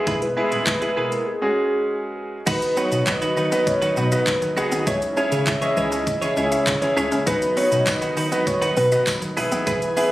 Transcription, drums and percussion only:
0.07 kick loud
0.07 closed hi-hat medium
0.22 closed hi-hat soft
0.52 closed hi-hat soft
0.67 kick loud
0.67 clap loud
0.67 closed hi-hat medium
0.82 closed hi-hat soft
1.12 closed hi-hat soft
2.47 kick loud
2.47 closed hi-hat medium
2.47 crash medium
2.47 shaker medium
2.62 closed hi-hat medium
2.62 shaker medium
2.77 shaker medium
2.92 closed hi-hat soft
2.92 shaker medium
3.07 kick loud
3.07 clap loud
3.07 closed hi-hat medium
3.07 shaker medium
3.22 closed hi-hat soft
3.22 shaker soft
3.37 shaker medium
3.52 closed hi-hat soft
3.52 shaker medium
3.67 kick loud
3.67 closed hi-hat medium
3.67 shaker medium
3.82 closed hi-hat medium
3.82 shaker soft
3.97 shaker medium
4.12 closed hi-hat soft
4.12 shaker medium
4.27 kick loud
4.27 clap loud
4.27 closed hi-hat medium
4.27 shaker medium
4.42 closed hi-hat medium
4.42 shaker medium
4.57 shaker medium
4.72 closed hi-hat soft
4.72 shaker medium
4.87 kick loud
4.87 closed hi-hat medium
4.87 shaker medium
5.02 closed hi-hat medium
5.02 shaker medium
5.17 shaker medium
5.32 closed hi-hat soft
5.32 shaker medium
5.47 kick loud
5.47 clap loud
5.47 closed hi-hat medium
5.47 shaker medium
5.62 closed hi-hat medium
5.62 shaker soft
5.77 shaker medium
5.92 closed hi-hat soft
5.92 shaker medium
6.07 kick loud
6.07 closed hi-hat medium
6.07 shaker medium
6.22 closed hi-hat soft
6.22 shaker medium
6.37 shaker medium
6.52 closed hi-hat soft
6.52 shaker medium
6.67 kick loud
6.67 clap loud
6.67 closed hi-hat medium
6.67 shaker medium
6.82 closed hi-hat medium
6.82 shaker medium
6.97 shaker medium
7.12 closed hi-hat soft
7.12 shaker medium
7.27 kick loud
7.27 closed hi-hat medium
7.27 shaker medium
7.42 closed hi-hat medium
7.42 shaker medium
7.57 open hi-hat medium
7.57 shaker medium
7.72 closed hi-hat soft
7.72 shaker medium
7.87 kick loud
7.87 clap loud
7.87 closed hi-hat medium
7.87 tambourine medium
7.87 shaker medium
8.02 closed hi-hat medium
8.02 shaker medium
8.17 open hi-hat medium
8.17 shaker medium
8.32 closed hi-hat soft
8.32 shaker medium
8.47 kick loud
8.47 closed hi-hat medium
8.47 shaker medium
8.62 closed hi-hat medium
8.62 shaker medium
8.77 open hi-hat medium
8.77 shaker medium
8.92 closed hi-hat soft
8.92 shaker medium
9.07 kick loud
9.07 clap loud
9.07 closed hi-hat medium
9.07 tambourine medium
9.07 shaker medium
9.22 closed hi-hat medium
9.22 shaker medium
9.37 open hi-hat medium
9.37 shaker medium
9.52 closed hi-hat soft
9.52 shaker medium
9.67 kick loud
9.67 closed hi-hat medium
9.67 shaker medium
9.82 closed hi-hat medium
9.82 shaker medium
9.97 open hi-hat medium
9.97 shaker medium

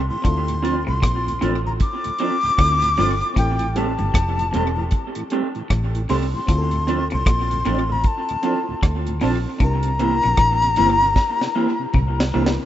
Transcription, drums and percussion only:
0.25 kick loud
0.25 closed hi-hat loud
0.48 closed hi-hat medium
0.65 closed hi-hat medium
1.03 kick loud
1.03 cross-stick loud
1.03 closed hi-hat loud
1.28 closed hi-hat medium
1.42 closed hi-hat medium
1.80 kick loud
1.80 closed hi-hat medium
2.04 closed hi-hat medium
2.18 closed hi-hat medium
2.58 kick loud
2.58 cross-stick loud
2.58 closed hi-hat medium
2.82 closed hi-hat medium
2.97 open hi-hat medium
3.21 closed hi-hat soft
3.36 kick loud
3.36 closed hi-hat medium
3.59 closed hi-hat medium
3.76 closed hi-hat medium
3.99 closed hi-hat soft
4.14 kick loud
4.14 cross-stick loud
4.14 closed hi-hat loud
4.39 closed hi-hat medium
4.54 closed hi-hat medium
4.91 kick loud
4.91 closed hi-hat medium
5.15 closed hi-hat medium
5.30 closed hi-hat medium
5.55 closed hi-hat soft
5.70 kick loud
5.70 cross-stick loud
5.70 closed hi-hat medium
5.95 closed hi-hat medium
6.09 open hi-hat medium
6.48 kick loud
6.48 closed hi-hat loud
6.71 closed hi-hat medium
6.88 closed hi-hat medium
7.11 closed hi-hat soft
7.26 kick loud
7.26 cross-stick loud
7.26 closed hi-hat loud
7.51 closed hi-hat medium
7.65 closed hi-hat medium
8.04 kick loud
8.04 closed hi-hat medium
8.29 closed hi-hat medium
8.43 closed hi-hat medium
8.83 kick loud
8.83 cross-stick loud
8.83 closed hi-hat medium
9.07 closed hi-hat medium
9.21 open hi-hat medium
9.60 kick loud
9.60 closed hi-hat loud
9.83 closed hi-hat medium
9.99 closed hi-hat medium
10.22 closed hi-hat soft
10.37 kick loud
10.37 cross-stick loud
10.37 closed hi-hat loud
10.62 closed hi-hat medium
10.76 closed hi-hat medium
11.16 kick loud
11.16 snare medium
11.41 snare medium
11.94 kick loud
11.94 mid tom medium
12.20 snare loud
12.46 snare loud

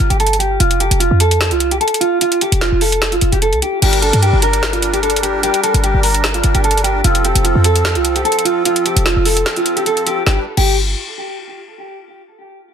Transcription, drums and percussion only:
0.10 closed hi-hat soft
0.20 closed hi-hat soft
0.27 closed hi-hat medium
0.33 closed hi-hat medium
0.40 closed hi-hat medium
0.60 closed hi-hat medium
0.71 closed hi-hat medium
0.80 closed hi-hat medium
0.91 closed hi-hat loud
1.00 closed hi-hat medium
1.20 closed hi-hat medium
1.31 closed hi-hat medium
1.41 snare loud
1.41 closed hi-hat medium
1.51 closed hi-hat medium
1.60 closed hi-hat medium
1.71 closed hi-hat medium
1.81 closed hi-hat soft
1.88 closed hi-hat medium
1.94 closed hi-hat medium
2.01 closed hi-hat medium
2.21 closed hi-hat medium
2.32 closed hi-hat medium
2.41 closed hi-hat medium
2.52 closed hi-hat loud
2.61 snare loud
2.61 closed hi-hat medium
2.81 open hi-hat medium
2.92 closed hi-hat medium
3.02 snare loud
3.02 closed hi-hat medium
3.12 closed hi-hat medium
3.21 closed hi-hat medium
3.32 closed hi-hat soft
3.42 closed hi-hat medium
3.53 closed hi-hat soft
3.62 closed hi-hat medium
3.82 closed hi-hat medium
3.82 crash loud
3.93 closed hi-hat medium
4.02 closed hi-hat medium
4.13 closed hi-hat loud
4.23 closed hi-hat medium
4.42 closed hi-hat medium
4.53 closed hi-hat medium
4.63 snare loud
4.63 closed hi-hat medium
4.73 closed hi-hat medium
4.82 closed hi-hat medium
4.94 closed hi-hat medium
5.03 closed hi-hat soft
5.10 closed hi-hat medium
5.16 closed hi-hat medium
5.23 closed hi-hat medium
5.43 closed hi-hat medium
5.54 closed hi-hat medium
5.64 closed hi-hat medium
5.74 closed hi-hat loud
5.84 closed hi-hat medium
6.03 open hi-hat medium
6.14 closed hi-hat medium
6.24 snare loud
6.24 closed hi-hat medium
6.34 closed hi-hat medium
6.44 closed hi-hat medium
6.55 closed hi-hat medium
6.64 closed hi-hat soft
6.71 closed hi-hat medium
6.78 closed hi-hat medium
6.84 closed hi-hat medium
7.04 closed hi-hat medium
7.15 closed hi-hat medium
7.25 closed hi-hat medium
7.35 closed hi-hat loud
7.45 closed hi-hat medium
7.64 closed hi-hat medium
7.76 closed hi-hat medium
7.85 snare loud
7.85 closed hi-hat medium
7.95 closed hi-hat medium
8.05 closed hi-hat medium
8.16 closed hi-hat soft
8.25 closed hi-hat soft
8.32 closed hi-hat medium
8.39 closed hi-hat medium
8.45 closed hi-hat medium
8.65 closed hi-hat medium
8.76 closed hi-hat medium
8.86 closed hi-hat medium
8.97 closed hi-hat loud
9.06 snare loud
9.06 closed hi-hat medium
9.25 open hi-hat medium
9.37 closed hi-hat medium
9.46 snare loud
9.46 closed hi-hat medium
9.56 closed hi-hat medium
9.66 closed hi-hat medium
9.77 closed hi-hat medium
9.86 closed hi-hat medium
9.97 closed hi-hat soft
10.07 closed hi-hat medium
10.27 snare medium
10.57 crash medium

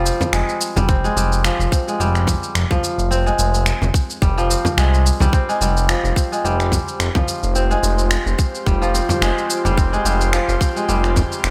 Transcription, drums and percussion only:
0.06 shaker medium
0.21 frame drum medium
0.21 shaker soft
0.33 finger snap loud
0.33 shaker soft
0.49 shaker soft
0.61 shaker medium
0.77 frame drum medium
0.77 shaker soft
0.89 kick loud
0.89 shaker soft
1.05 shaker soft
1.17 shaker medium
1.33 shaker soft
1.44 finger snap medium
1.44 shaker soft
1.61 shaker soft
1.72 kick loud
1.72 shaker medium
1.88 shaker soft
2.01 shaker soft
2.15 finger snap soft
2.15 shaker soft
2.27 kick medium
2.27 frame drum medium
2.27 shaker medium
2.43 shaker soft
2.55 finger snap loud
2.55 shaker soft
2.71 kick loud
2.71 frame drum medium
2.71 shaker soft
2.84 shaker medium
2.99 shaker soft
3.12 shaker soft
3.27 shaker soft
3.39 shaker medium
3.55 shaker soft
3.66 finger snap medium
3.66 shaker soft
3.82 frame drum medium
3.82 shaker soft
3.94 kick loud
3.94 shaker medium
4.10 shaker soft
4.22 kick loud
4.22 shaker soft
4.38 shaker soft
4.51 shaker medium
4.65 frame drum medium
4.65 shaker soft
4.78 finger snap loud
4.78 shaker soft
4.94 shaker soft
5.06 shaker medium
5.20 frame drum medium
5.20 shaker soft
5.33 kick loud
5.33 shaker soft
5.50 shaker soft
5.62 shaker medium
5.77 shaker soft
5.89 finger snap medium
5.89 shaker soft
6.05 shaker soft
6.16 kick loud
6.16 shaker medium
6.33 shaker soft
6.45 shaker soft
6.60 finger snap soft
6.60 shaker soft
6.72 kick medium
6.72 frame drum medium
6.72 shaker medium
6.88 shaker soft
7.00 finger snap medium
7.00 shaker soft
7.15 kick loud
7.15 frame drum medium
7.15 shaker soft
7.28 shaker medium
7.43 shaker soft
7.56 shaker soft
7.71 shaker soft
7.84 shaker medium
7.99 shaker soft
8.11 finger snap medium
8.11 shaker soft
8.27 shaker soft
8.39 kick loud
8.39 shaker medium
8.55 shaker soft
8.66 kick medium
8.66 shaker soft
8.83 shaker soft
8.95 shaker medium
9.09 frame drum medium
9.09 shaker soft
9.22 finger snap medium
9.22 shaker soft
9.38 shaker soft
9.50 shaker medium
9.65 frame drum medium
9.65 shaker soft
9.78 kick loud
9.78 shaker soft
9.94 shaker soft
10.06 shaker medium
10.21 shaker soft
10.33 finger snap loud
10.33 shaker soft
10.49 shaker soft
10.61 kick medium
10.61 shaker medium
10.77 shaker soft
10.89 shaker soft
11.04 finger snap soft
11.04 shaker soft
11.16 kick medium
11.16 frame drum medium
11.16 shaker medium
11.32 shaker soft
11.44 finger snap loud
11.44 shaker soft

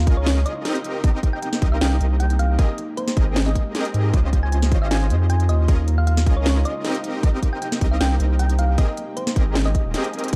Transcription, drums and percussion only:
0.07 kick loud
0.07 closed hi-hat medium
0.26 snare loud
0.26 closed hi-hat medium
0.46 closed hi-hat medium
0.65 snare medium
0.65 closed hi-hat medium
0.75 closed hi-hat medium
0.84 closed hi-hat medium
1.04 kick loud
1.04 closed hi-hat medium
1.23 kick medium
1.23 closed hi-hat medium
1.43 closed hi-hat medium
1.53 snare medium
1.62 kick loud
1.62 closed hi-hat medium
1.81 snare loud
1.81 closed hi-hat medium
2.01 closed hi-hat medium
2.20 closed hi-hat medium
2.30 closed hi-hat medium
2.39 closed hi-hat medium
2.59 kick loud
2.59 closed hi-hat medium
2.78 closed hi-hat medium
2.97 closed hi-hat medium
3.08 snare medium
3.17 kick loud
3.17 closed hi-hat medium
3.36 snare loud
3.36 closed hi-hat medium
3.55 kick medium
3.55 closed hi-hat medium
3.75 snare medium
3.75 closed hi-hat medium
3.85 closed hi-hat medium
3.94 closed hi-hat medium
4.14 kick loud
4.14 closed hi-hat medium
4.33 kick medium
4.33 closed hi-hat medium
4.52 closed hi-hat medium
4.62 snare medium
4.72 kick loud
4.72 closed hi-hat medium
4.91 snare loud
4.91 closed hi-hat medium
5.10 closed hi-hat medium
5.30 closed hi-hat medium
5.40 closed hi-hat medium
5.49 closed hi-hat medium
5.68 kick loud
5.68 closed hi-hat medium
5.88 closed hi-hat medium
6.07 closed hi-hat medium
6.17 snare medium
6.26 kick loud
6.26 closed hi-hat medium
6.46 snare loud
6.46 closed hi-hat medium
6.65 closed hi-hat medium
6.85 snare medium
6.85 closed hi-hat medium
6.95 closed hi-hat medium
7.04 closed hi-hat medium
7.23 kick loud
7.23 closed hi-hat medium
7.43 kick medium
7.43 closed hi-hat medium
7.62 closed hi-hat medium
7.72 snare medium
7.81 kick loud
7.81 closed hi-hat medium
8.01 snare loud
8.01 closed hi-hat medium
8.20 closed hi-hat medium
8.39 closed hi-hat medium
8.49 closed hi-hat medium
8.59 closed hi-hat medium
8.78 kick loud
8.78 closed hi-hat medium
8.97 closed hi-hat medium
9.17 closed hi-hat medium
9.27 snare medium
9.36 kick loud
9.36 closed hi-hat medium
9.55 snare loud
9.55 closed hi-hat medium
9.75 kick medium
9.75 closed hi-hat medium
9.94 snare medium
9.94 closed hi-hat medium
10.04 closed hi-hat medium
10.13 closed hi-hat medium
10.19 closed hi-hat medium
10.24 closed hi-hat medium
10.28 closed hi-hat medium

